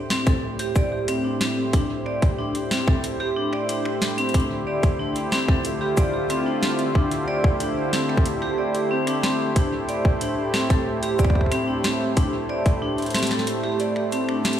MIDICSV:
0, 0, Header, 1, 4, 480
1, 0, Start_track
1, 0, Tempo, 652174
1, 1276, Time_signature, 4, 2, 24, 8
1, 10745, End_track
2, 0, Start_track
2, 0, Title_t, "Vibraphone"
2, 0, Program_c, 0, 11
2, 77, Note_on_c, 0, 60, 102
2, 147, Note_off_c, 0, 60, 0
2, 197, Note_on_c, 0, 69, 78
2, 239, Note_off_c, 0, 69, 0
2, 437, Note_on_c, 0, 67, 103
2, 479, Note_off_c, 0, 67, 0
2, 557, Note_on_c, 0, 74, 101
2, 627, Note_off_c, 0, 74, 0
2, 677, Note_on_c, 0, 67, 74
2, 719, Note_off_c, 0, 67, 0
2, 797, Note_on_c, 0, 60, 100
2, 867, Note_off_c, 0, 60, 0
2, 916, Note_on_c, 0, 62, 75
2, 1021, Note_off_c, 0, 62, 0
2, 1036, Note_on_c, 0, 60, 101
2, 1106, Note_off_c, 0, 60, 0
2, 1276, Note_on_c, 0, 62, 87
2, 1381, Note_off_c, 0, 62, 0
2, 1516, Note_on_c, 0, 74, 99
2, 1586, Note_off_c, 0, 74, 0
2, 1756, Note_on_c, 0, 62, 81
2, 1826, Note_off_c, 0, 62, 0
2, 1997, Note_on_c, 0, 60, 100
2, 2067, Note_off_c, 0, 60, 0
2, 2116, Note_on_c, 0, 69, 76
2, 2158, Note_off_c, 0, 69, 0
2, 2356, Note_on_c, 0, 67, 105
2, 2398, Note_off_c, 0, 67, 0
2, 2476, Note_on_c, 0, 62, 100
2, 2546, Note_off_c, 0, 62, 0
2, 2596, Note_on_c, 0, 74, 101
2, 2666, Note_off_c, 0, 74, 0
2, 2717, Note_on_c, 0, 62, 82
2, 2759, Note_off_c, 0, 62, 0
2, 2957, Note_on_c, 0, 62, 75
2, 3062, Note_off_c, 0, 62, 0
2, 3077, Note_on_c, 0, 60, 104
2, 3147, Note_off_c, 0, 60, 0
2, 3197, Note_on_c, 0, 62, 83
2, 3301, Note_off_c, 0, 62, 0
2, 3437, Note_on_c, 0, 74, 100
2, 3507, Note_off_c, 0, 74, 0
2, 3676, Note_on_c, 0, 62, 84
2, 3746, Note_off_c, 0, 62, 0
2, 3916, Note_on_c, 0, 60, 102
2, 3986, Note_off_c, 0, 60, 0
2, 4035, Note_on_c, 0, 69, 77
2, 4078, Note_off_c, 0, 69, 0
2, 4276, Note_on_c, 0, 67, 104
2, 4318, Note_off_c, 0, 67, 0
2, 4396, Note_on_c, 0, 74, 98
2, 4466, Note_off_c, 0, 74, 0
2, 4515, Note_on_c, 0, 67, 75
2, 4558, Note_off_c, 0, 67, 0
2, 4636, Note_on_c, 0, 60, 98
2, 4706, Note_off_c, 0, 60, 0
2, 4757, Note_on_c, 0, 62, 73
2, 4862, Note_off_c, 0, 62, 0
2, 4877, Note_on_c, 0, 60, 100
2, 4947, Note_off_c, 0, 60, 0
2, 5116, Note_on_c, 0, 62, 84
2, 5221, Note_off_c, 0, 62, 0
2, 5356, Note_on_c, 0, 74, 100
2, 5426, Note_off_c, 0, 74, 0
2, 5596, Note_on_c, 0, 62, 85
2, 5666, Note_off_c, 0, 62, 0
2, 5836, Note_on_c, 0, 60, 103
2, 5906, Note_off_c, 0, 60, 0
2, 5957, Note_on_c, 0, 69, 80
2, 5999, Note_off_c, 0, 69, 0
2, 6196, Note_on_c, 0, 67, 104
2, 6238, Note_off_c, 0, 67, 0
2, 6317, Note_on_c, 0, 74, 98
2, 6386, Note_off_c, 0, 74, 0
2, 6436, Note_on_c, 0, 67, 75
2, 6478, Note_off_c, 0, 67, 0
2, 6556, Note_on_c, 0, 60, 100
2, 6626, Note_off_c, 0, 60, 0
2, 6676, Note_on_c, 0, 62, 74
2, 6781, Note_off_c, 0, 62, 0
2, 6796, Note_on_c, 0, 60, 101
2, 6866, Note_off_c, 0, 60, 0
2, 7036, Note_on_c, 0, 62, 82
2, 7141, Note_off_c, 0, 62, 0
2, 7276, Note_on_c, 0, 74, 101
2, 7346, Note_off_c, 0, 74, 0
2, 7516, Note_on_c, 0, 62, 84
2, 7586, Note_off_c, 0, 62, 0
2, 7756, Note_on_c, 0, 60, 100
2, 7826, Note_off_c, 0, 60, 0
2, 7877, Note_on_c, 0, 69, 80
2, 7919, Note_off_c, 0, 69, 0
2, 8116, Note_on_c, 0, 67, 109
2, 8158, Note_off_c, 0, 67, 0
2, 8236, Note_on_c, 0, 74, 99
2, 8306, Note_off_c, 0, 74, 0
2, 8356, Note_on_c, 0, 67, 76
2, 8398, Note_off_c, 0, 67, 0
2, 8476, Note_on_c, 0, 60, 99
2, 8546, Note_off_c, 0, 60, 0
2, 8597, Note_on_c, 0, 62, 73
2, 8702, Note_off_c, 0, 62, 0
2, 8715, Note_on_c, 0, 60, 105
2, 8786, Note_off_c, 0, 60, 0
2, 8956, Note_on_c, 0, 62, 83
2, 9061, Note_off_c, 0, 62, 0
2, 9196, Note_on_c, 0, 74, 98
2, 9266, Note_off_c, 0, 74, 0
2, 9436, Note_on_c, 0, 62, 84
2, 9506, Note_off_c, 0, 62, 0
2, 9676, Note_on_c, 0, 60, 105
2, 9746, Note_off_c, 0, 60, 0
2, 9795, Note_on_c, 0, 69, 79
2, 9838, Note_off_c, 0, 69, 0
2, 10035, Note_on_c, 0, 67, 107
2, 10078, Note_off_c, 0, 67, 0
2, 10155, Note_on_c, 0, 74, 102
2, 10226, Note_off_c, 0, 74, 0
2, 10275, Note_on_c, 0, 67, 74
2, 10318, Note_off_c, 0, 67, 0
2, 10395, Note_on_c, 0, 60, 98
2, 10466, Note_off_c, 0, 60, 0
2, 10516, Note_on_c, 0, 62, 75
2, 10621, Note_off_c, 0, 62, 0
2, 10636, Note_on_c, 0, 60, 100
2, 10706, Note_off_c, 0, 60, 0
2, 10745, End_track
3, 0, Start_track
3, 0, Title_t, "Analog synth pad"
3, 0, Program_c, 1, 89
3, 0, Note_on_c, 1, 45, 93
3, 0, Note_on_c, 1, 57, 90
3, 0, Note_on_c, 1, 64, 83
3, 0, Note_on_c, 1, 67, 92
3, 0, Note_on_c, 1, 72, 80
3, 3196, Note_on_c, 1, 50, 94
3, 3197, Note_off_c, 1, 45, 0
3, 3960, Note_on_c, 1, 65, 73
3, 7036, Note_off_c, 1, 50, 0
3, 7036, Note_on_c, 1, 45, 86
3, 7037, Note_off_c, 1, 65, 0
3, 10745, Note_off_c, 1, 45, 0
3, 10745, Note_off_c, 1, 57, 0
3, 10745, Note_off_c, 1, 64, 0
3, 10745, Note_off_c, 1, 67, 0
3, 10745, Note_off_c, 1, 72, 0
3, 10745, End_track
4, 0, Start_track
4, 0, Title_t, "Drums"
4, 75, Note_on_c, 9, 26, 79
4, 75, Note_on_c, 9, 38, 127
4, 149, Note_off_c, 9, 26, 0
4, 149, Note_off_c, 9, 38, 0
4, 196, Note_on_c, 9, 26, 58
4, 196, Note_on_c, 9, 42, 53
4, 197, Note_on_c, 9, 36, 127
4, 269, Note_off_c, 9, 26, 0
4, 269, Note_off_c, 9, 42, 0
4, 270, Note_off_c, 9, 36, 0
4, 436, Note_on_c, 9, 42, 79
4, 509, Note_off_c, 9, 42, 0
4, 556, Note_on_c, 9, 26, 53
4, 556, Note_on_c, 9, 69, 78
4, 557, Note_on_c, 9, 36, 115
4, 630, Note_off_c, 9, 26, 0
4, 630, Note_off_c, 9, 36, 0
4, 630, Note_off_c, 9, 69, 0
4, 795, Note_on_c, 9, 26, 60
4, 795, Note_on_c, 9, 42, 95
4, 869, Note_off_c, 9, 26, 0
4, 869, Note_off_c, 9, 42, 0
4, 1036, Note_on_c, 9, 26, 35
4, 1036, Note_on_c, 9, 38, 126
4, 1036, Note_on_c, 9, 42, 54
4, 1109, Note_off_c, 9, 26, 0
4, 1109, Note_off_c, 9, 38, 0
4, 1109, Note_off_c, 9, 42, 0
4, 1276, Note_on_c, 9, 42, 93
4, 1277, Note_on_c, 9, 36, 109
4, 1349, Note_off_c, 9, 42, 0
4, 1350, Note_off_c, 9, 36, 0
4, 1516, Note_on_c, 9, 26, 35
4, 1590, Note_off_c, 9, 26, 0
4, 1636, Note_on_c, 9, 42, 51
4, 1637, Note_on_c, 9, 36, 125
4, 1710, Note_off_c, 9, 36, 0
4, 1710, Note_off_c, 9, 42, 0
4, 1876, Note_on_c, 9, 42, 77
4, 1950, Note_off_c, 9, 42, 0
4, 1996, Note_on_c, 9, 26, 73
4, 1996, Note_on_c, 9, 38, 120
4, 2069, Note_off_c, 9, 26, 0
4, 2069, Note_off_c, 9, 38, 0
4, 2116, Note_on_c, 9, 26, 58
4, 2117, Note_on_c, 9, 36, 125
4, 2189, Note_off_c, 9, 26, 0
4, 2190, Note_off_c, 9, 36, 0
4, 2236, Note_on_c, 9, 42, 94
4, 2310, Note_off_c, 9, 42, 0
4, 2356, Note_on_c, 9, 26, 35
4, 2430, Note_off_c, 9, 26, 0
4, 2596, Note_on_c, 9, 26, 58
4, 2669, Note_off_c, 9, 26, 0
4, 2716, Note_on_c, 9, 42, 95
4, 2790, Note_off_c, 9, 42, 0
4, 2836, Note_on_c, 9, 26, 75
4, 2910, Note_off_c, 9, 26, 0
4, 2956, Note_on_c, 9, 38, 124
4, 3030, Note_off_c, 9, 38, 0
4, 3077, Note_on_c, 9, 42, 49
4, 3150, Note_off_c, 9, 42, 0
4, 3157, Note_on_c, 9, 42, 41
4, 3196, Note_off_c, 9, 42, 0
4, 3196, Note_on_c, 9, 42, 91
4, 3197, Note_on_c, 9, 36, 104
4, 3237, Note_off_c, 9, 42, 0
4, 3237, Note_on_c, 9, 42, 34
4, 3270, Note_off_c, 9, 36, 0
4, 3310, Note_off_c, 9, 42, 0
4, 3556, Note_on_c, 9, 42, 51
4, 3557, Note_on_c, 9, 36, 118
4, 3630, Note_off_c, 9, 36, 0
4, 3630, Note_off_c, 9, 42, 0
4, 3796, Note_on_c, 9, 42, 76
4, 3870, Note_off_c, 9, 42, 0
4, 3916, Note_on_c, 9, 26, 77
4, 3916, Note_on_c, 9, 38, 122
4, 3990, Note_off_c, 9, 26, 0
4, 3990, Note_off_c, 9, 38, 0
4, 4036, Note_on_c, 9, 26, 59
4, 4037, Note_on_c, 9, 36, 122
4, 4110, Note_off_c, 9, 26, 0
4, 4110, Note_off_c, 9, 36, 0
4, 4156, Note_on_c, 9, 42, 89
4, 4230, Note_off_c, 9, 42, 0
4, 4396, Note_on_c, 9, 26, 50
4, 4396, Note_on_c, 9, 42, 51
4, 4396, Note_on_c, 9, 69, 83
4, 4397, Note_on_c, 9, 36, 107
4, 4469, Note_off_c, 9, 26, 0
4, 4469, Note_off_c, 9, 42, 0
4, 4469, Note_off_c, 9, 69, 0
4, 4470, Note_off_c, 9, 36, 0
4, 4636, Note_on_c, 9, 26, 59
4, 4636, Note_on_c, 9, 42, 90
4, 4710, Note_off_c, 9, 26, 0
4, 4710, Note_off_c, 9, 42, 0
4, 4877, Note_on_c, 9, 26, 35
4, 4877, Note_on_c, 9, 38, 120
4, 4950, Note_off_c, 9, 26, 0
4, 4950, Note_off_c, 9, 38, 0
4, 4996, Note_on_c, 9, 42, 50
4, 5069, Note_off_c, 9, 42, 0
4, 5117, Note_on_c, 9, 36, 102
4, 5190, Note_off_c, 9, 36, 0
4, 5236, Note_on_c, 9, 42, 75
4, 5310, Note_off_c, 9, 42, 0
4, 5356, Note_on_c, 9, 26, 37
4, 5429, Note_off_c, 9, 26, 0
4, 5477, Note_on_c, 9, 36, 113
4, 5550, Note_off_c, 9, 36, 0
4, 5596, Note_on_c, 9, 42, 88
4, 5669, Note_off_c, 9, 42, 0
4, 5836, Note_on_c, 9, 26, 77
4, 5836, Note_on_c, 9, 38, 115
4, 5836, Note_on_c, 9, 42, 52
4, 5910, Note_off_c, 9, 26, 0
4, 5910, Note_off_c, 9, 38, 0
4, 5910, Note_off_c, 9, 42, 0
4, 5956, Note_on_c, 9, 26, 59
4, 6017, Note_on_c, 9, 36, 117
4, 6030, Note_off_c, 9, 26, 0
4, 6076, Note_on_c, 9, 42, 88
4, 6090, Note_off_c, 9, 36, 0
4, 6150, Note_off_c, 9, 42, 0
4, 6196, Note_on_c, 9, 26, 36
4, 6270, Note_off_c, 9, 26, 0
4, 6437, Note_on_c, 9, 42, 51
4, 6510, Note_off_c, 9, 42, 0
4, 6677, Note_on_c, 9, 26, 79
4, 6677, Note_on_c, 9, 42, 73
4, 6750, Note_off_c, 9, 26, 0
4, 6750, Note_off_c, 9, 42, 0
4, 6796, Note_on_c, 9, 38, 116
4, 6870, Note_off_c, 9, 38, 0
4, 7036, Note_on_c, 9, 42, 92
4, 7037, Note_on_c, 9, 36, 97
4, 7110, Note_off_c, 9, 36, 0
4, 7110, Note_off_c, 9, 42, 0
4, 7276, Note_on_c, 9, 42, 51
4, 7350, Note_off_c, 9, 42, 0
4, 7396, Note_on_c, 9, 36, 110
4, 7470, Note_off_c, 9, 36, 0
4, 7515, Note_on_c, 9, 42, 91
4, 7589, Note_off_c, 9, 42, 0
4, 7756, Note_on_c, 9, 26, 84
4, 7756, Note_on_c, 9, 38, 117
4, 7829, Note_off_c, 9, 26, 0
4, 7829, Note_off_c, 9, 38, 0
4, 7876, Note_on_c, 9, 26, 64
4, 7876, Note_on_c, 9, 36, 115
4, 7876, Note_on_c, 9, 42, 50
4, 7950, Note_off_c, 9, 26, 0
4, 7950, Note_off_c, 9, 36, 0
4, 7950, Note_off_c, 9, 42, 0
4, 8116, Note_on_c, 9, 42, 77
4, 8189, Note_off_c, 9, 42, 0
4, 8236, Note_on_c, 9, 26, 54
4, 8236, Note_on_c, 9, 36, 97
4, 8236, Note_on_c, 9, 69, 83
4, 8276, Note_off_c, 9, 36, 0
4, 8276, Note_on_c, 9, 36, 78
4, 8309, Note_off_c, 9, 26, 0
4, 8309, Note_off_c, 9, 69, 0
4, 8316, Note_off_c, 9, 36, 0
4, 8316, Note_on_c, 9, 36, 63
4, 8356, Note_off_c, 9, 36, 0
4, 8356, Note_on_c, 9, 36, 55
4, 8397, Note_off_c, 9, 36, 0
4, 8397, Note_on_c, 9, 36, 46
4, 8436, Note_off_c, 9, 36, 0
4, 8436, Note_on_c, 9, 36, 36
4, 8476, Note_on_c, 9, 26, 65
4, 8476, Note_on_c, 9, 42, 92
4, 8510, Note_off_c, 9, 36, 0
4, 8549, Note_off_c, 9, 26, 0
4, 8549, Note_off_c, 9, 42, 0
4, 8716, Note_on_c, 9, 26, 39
4, 8716, Note_on_c, 9, 38, 117
4, 8716, Note_on_c, 9, 42, 54
4, 8789, Note_off_c, 9, 26, 0
4, 8789, Note_off_c, 9, 38, 0
4, 8789, Note_off_c, 9, 42, 0
4, 8955, Note_on_c, 9, 42, 96
4, 8956, Note_on_c, 9, 36, 102
4, 9029, Note_off_c, 9, 42, 0
4, 9030, Note_off_c, 9, 36, 0
4, 9195, Note_on_c, 9, 26, 38
4, 9269, Note_off_c, 9, 26, 0
4, 9315, Note_on_c, 9, 42, 52
4, 9316, Note_on_c, 9, 36, 116
4, 9389, Note_off_c, 9, 42, 0
4, 9390, Note_off_c, 9, 36, 0
4, 9555, Note_on_c, 9, 42, 37
4, 9585, Note_off_c, 9, 42, 0
4, 9585, Note_on_c, 9, 42, 42
4, 9615, Note_off_c, 9, 42, 0
4, 9615, Note_on_c, 9, 42, 47
4, 9645, Note_off_c, 9, 42, 0
4, 9645, Note_on_c, 9, 42, 53
4, 9675, Note_off_c, 9, 42, 0
4, 9675, Note_on_c, 9, 26, 84
4, 9675, Note_on_c, 9, 38, 112
4, 9675, Note_on_c, 9, 42, 57
4, 9705, Note_off_c, 9, 42, 0
4, 9705, Note_on_c, 9, 42, 62
4, 9734, Note_off_c, 9, 38, 0
4, 9734, Note_off_c, 9, 42, 0
4, 9734, Note_on_c, 9, 38, 90
4, 9734, Note_on_c, 9, 42, 66
4, 9748, Note_off_c, 9, 26, 0
4, 9765, Note_off_c, 9, 42, 0
4, 9765, Note_on_c, 9, 42, 71
4, 9795, Note_off_c, 9, 38, 0
4, 9795, Note_on_c, 9, 26, 65
4, 9795, Note_on_c, 9, 38, 75
4, 9838, Note_off_c, 9, 42, 0
4, 9855, Note_off_c, 9, 38, 0
4, 9855, Note_on_c, 9, 38, 58
4, 9869, Note_off_c, 9, 26, 0
4, 9914, Note_on_c, 9, 42, 97
4, 9929, Note_off_c, 9, 38, 0
4, 9988, Note_off_c, 9, 42, 0
4, 10035, Note_on_c, 9, 26, 38
4, 10108, Note_off_c, 9, 26, 0
4, 10155, Note_on_c, 9, 42, 54
4, 10228, Note_off_c, 9, 42, 0
4, 10274, Note_on_c, 9, 26, 64
4, 10348, Note_off_c, 9, 26, 0
4, 10395, Note_on_c, 9, 42, 93
4, 10468, Note_off_c, 9, 42, 0
4, 10515, Note_on_c, 9, 26, 82
4, 10588, Note_off_c, 9, 26, 0
4, 10634, Note_on_c, 9, 38, 114
4, 10634, Note_on_c, 9, 42, 55
4, 10694, Note_off_c, 9, 42, 0
4, 10694, Note_on_c, 9, 42, 63
4, 10708, Note_off_c, 9, 38, 0
4, 10745, Note_off_c, 9, 42, 0
4, 10745, End_track
0, 0, End_of_file